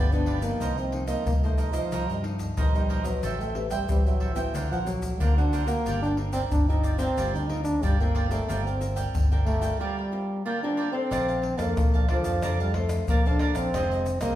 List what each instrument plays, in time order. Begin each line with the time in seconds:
Already playing: fingered electric bass G1, nylon-string guitar D3, trombone B3, cavaquinho G4 B4 D5
0.12 nylon-string guitar F3 B3 D#4, trombone D4, cavaquinho G4 B4 D5, pandeiro, shaker
0.26 cavaquinho F4 G4 B4 D5, pandeiro
0.41 nylon-string guitar F3 A#3 D#4, trombone A#3, cavaquinho G4 B4 D5, pandeiro, shaker, surdo
0.60 fingered electric bass C2, nylon-string guitar C3, cavaquinho D#4 A#4 C5 D#5, pandeiro, shaker, surdo
0.78 trombone C4, cavaquinho A#4 C5 D#5, pandeiro, shaker
0.92 nylon-string guitar F3 A#3 D#4, muted cavaquinho stroke, pandeiro
1.07 trombone A#3, cavaquinho A#4 C5 D#5, pandeiro, shaker, surdo
1.25 fingered electric bass C2, nylon-string guitar G2, trombone A#3, pandeiro, shaker, surdo
1.43 nylon-string guitar F3 A#3 D#4, trombone A3, cavaquinho A#4 C5 D#5, pandeiro, shaker
1.58 cavaquinho D#4 A#4 C5 D#5, pandeiro, shaker
1.73 trombone F3, nylon-string guitar F3 A#3 D#4, cavaquinho A#4 C5 D#5, pandeiro, shaker, surdo
1.92 fingered electric bass C2, nylon-string guitar C3 F3 A#3 D#4, cavaquinho D#4 A#4 C5 D#5, pandeiro, shaker, surdo
2.09 fingered electric bass G2, trombone G3, cavaquinho A#4 C5 D#5, pandeiro, shaker
2.23 nylon-string guitar F3 A#3 D#4, muted cavaquinho stroke, pandeiro
2.39 pandeiro, shaker, surdo
2.57 fingered electric bass A#1, nylon-string guitar G2, trombone D#3, cavaquinho D#4 A#4 C5 D#5, pandeiro, shaker, surdo
2.74 nylon-string guitar F3 A#3 D#4, trombone G3, cavaquinho A#4 C5 D#5, pandeiro, shaker
2.89 cavaquinho D#4 A#4 C5 D#5, pandeiro
3.04 trombone F#3, nylon-string guitar C4 B4, cavaquinho A#4 C5 D#5, pandeiro, shaker, surdo
3.23 fingered electric bass A1, nylon-string guitar A3, cavaquinho A4 C5 E5 G5, pandeiro, shaker, surdo
3.40 trombone A3, cavaquinho C5 E5 G5, pandeiro, shaker
3.55 nylon-string guitar C4 G4 B4, muted cavaquinho stroke, pandeiro
3.70 trombone G3, cavaquinho C5 E5 G5, pandeiro, shaker, surdo
3.88 fingered electric bass A1, nylon-string guitar E3 C4 G4 B4, trombone G3, pandeiro, shaker, surdo
4.05 trombone F#3, cavaquinho C5 E5 G5, pandeiro, shaker
4.20 cavaquinho A4 C5 E5 G5, pandeiro
4.35 trombone E3, nylon-string guitar A#3 C4 F#4, cavaquinho C5 E5 G5, pandeiro, shaker, surdo
4.54 fingered electric bass D2, nylon-string guitar D3, cavaquinho D4 A#4 C5 F#5, pandeiro, shaker, surdo
4.71 fingered electric bass A#1, trombone F3, cavaquinho A#4 C5 F#5, pandeiro, shaker
4.86 trombone F#3, nylon-string guitar A#3 C4 F#4, muted cavaquinho stroke, pandeiro, shaker, surdo
5.02 pandeiro, shaker, surdo
5.20 fingered electric bass D2, nylon-string guitar D3, trombone A#3, cavaquinho D4 A#4 C5 F#5, pandeiro, shaker, surdo
5.37 nylon-string guitar A#3 C4 F#4, trombone D4, cavaquinho A#4 C5 F#5, pandeiro, shaker
5.53 cavaquinho D4 A#4 C5 F#5, pandeiro, shaker
5.67 trombone A#3, nylon-string guitar C4 F4 A#4, cavaquinho A#4 C5 F#5, pandeiro, shaker, surdo
5.85 fingered electric bass G1, nylon-string guitar G3, cavaquinho F4 A#4 D5 G5, pandeiro, shaker, surdo
6.03 trombone D4, cavaquinho A#4 D5 G5, pandeiro, shaker
6.17 nylon-string guitar C4 F4 A#4, muted cavaquinho stroke, pandeiro
6.33 trombone C4, cavaquinho A#4 D5 G5, pandeiro, shaker, surdo
6.51 fingered electric bass G1, trombone D4, pandeiro, shaker, surdo
6.69 nylon-string guitar C4 F4 A#4, trombone D#4, cavaquinho A#4 D5 G5, pandeiro, shaker
6.83 cavaquinho F4 A#4 D5 G5, pandeiro, shaker
6.99 trombone C4, nylon-string guitar C4 F4 A#4, cavaquinho A#4 D5 G5, pandeiro, shaker, surdo
7.17 fingered electric bass G1, nylon-string guitar G3 C4 F4 A#4, cavaquinho F4 A#4 D5 G5, pandeiro, shaker, surdo
7.34 fingered electric bass D2, trombone D#4, cavaquinho A#4 D5 G5, pandeiro, shaker
7.39 trombone D4
7.47 nylon-string guitar C4 F4 A#4, trombone D#4, muted cavaquinho stroke, pandeiro
7.64 trombone D4, pandeiro, shaker, surdo
7.83 fingered electric bass G1, nylon-string guitar D3, trombone G3, cavaquinho F4 A#4 D5 G5, pandeiro, shaker, surdo
8.00 trombone A#3, nylon-string guitar C4 F4 A#4, cavaquinho A#4 D5 G5, pandeiro, shaker
8.15 cavaquinho F4 A#4 D5 G5, pandeiro
8.30 trombone A3, nylon-string guitar C4 F4 A#4, cavaquinho A#4 D5 G5, pandeiro, shaker, surdo
8.48 fingered electric bass G1, nylon-string guitar G3 C4 F4 A#4, cavaquinho F4 A#4 D5 G5, pandeiro, shaker, surdo
8.66 trombone C4, cavaquinho A#4 D5 G5, pandeiro, shaker
8.80 nylon-string guitar C4 F4 A#4, muted cavaquinho stroke, pandeiro, shaker
8.96 cavaquinho A#4 D5 G5, pandeiro, shaker, surdo
9.14 fingered electric bass G1, nylon-string guitar D3, pandeiro, shaker, surdo
9.31 nylon-string guitar C4 F4 A#4, cavaquinho A#4 D5 G5, pandeiro, shaker
9.46 trombone A3, cavaquinho F4 A#4 D5 G5, pandeiro
9.61 nylon-string guitar C4 F4 A#4, cavaquinho A#4 D5 G5, pandeiro, shaker, surdo
9.79 trombone G3, nylon-string guitar G3 C4 F4 A#4, cavaquinho F4 A#4 D5 G5
9.97 cavaquinho A#4 D5 G5
10.12 nylon-string guitar C4 F4 A#4, muted cavaquinho stroke
10.45 nylon-string guitar D3, trombone A#3, cavaquinho F4 A#4 D5 G5
10.63 nylon-string guitar C4 F4 A#4, trombone D4, cavaquinho A#4 D5 G5
10.77 cavaquinho F4 A#4 D5 G5
10.92 trombone C4, nylon-string guitar D4 A4 C5, cavaquinho A#4 D5 G5
11.11 fingered electric bass A#1, nylon-string guitar A#3, cavaquinho A#4 D5 F5 A5, pandeiro, tamborim, shaker, surdo
11.28 cavaquinho D5 F5 A5, pandeiro, shaker
11.42 muted cavaquinho stroke, pandeiro
11.58 fingered electric bass F2, trombone A#3, nylon-string guitar D4 A4 C5, cavaquinho D5 F5 A5, pandeiro, tamborim, shaker, surdo
11.77 fingered electric bass A#1, nylon-string guitar F3, pandeiro, tamborim, shaker, surdo
11.94 cavaquinho D5 F5 A5, pandeiro, shaker
12.08 trombone F3, nylon-string guitar D4 A4 C5, cavaquinho A#4 D5 F5 A5, pandeiro, tamborim
12.24 fingered electric bass F2, cavaquinho D5 F5 A5, pandeiro, shaker, surdo
12.42 fingered electric bass F2, nylon-string guitar A#3 D4 A4 C5, cavaquinho A#4 D5 F5 A5, pandeiro, tamborim, shaker, surdo
12.60 trombone G3, cavaquinho D5 F5 A5, pandeiro, shaker
12.74 trombone A3, nylon-string guitar D4 A4 C5, muted cavaquinho stroke, pandeiro, tamborim, surdo
12.89 pandeiro, tamborim, shaker, surdo
13.08 fingered electric bass A#1, nylon-string guitar F3, trombone A#3, cavaquinho A#4 D5 F5 A5, pandeiro, shaker, surdo
13.25 nylon-string guitar D4 A4 C5, trombone D4, cavaquinho D5 F5 A5, pandeiro, shaker
13.39 cavaquinho A#4 D5 F5 A5, pandeiro, tamborim
13.55 fingered electric bass A#1, trombone C4, cavaquinho D5 F5 A5, pandeiro, tamborim, shaker, surdo
13.74 fingered electric bass F1, nylon-string guitar F2 D#3 G#3 C4, cavaquinho F4 G#4 C5 D#5, pandeiro, tamborim, shaker, surdo
13.91 cavaquinho G#4 C5 D#5, pandeiro, shaker
14.06 muted cavaquinho stroke, pandeiro, shaker
14.21 fingered electric bass C2, nylon-string guitar D#3 G#3 C4, trombone A#3, cavaquinho G#4 C5 D#5, pandeiro, tamborim, shaker, surdo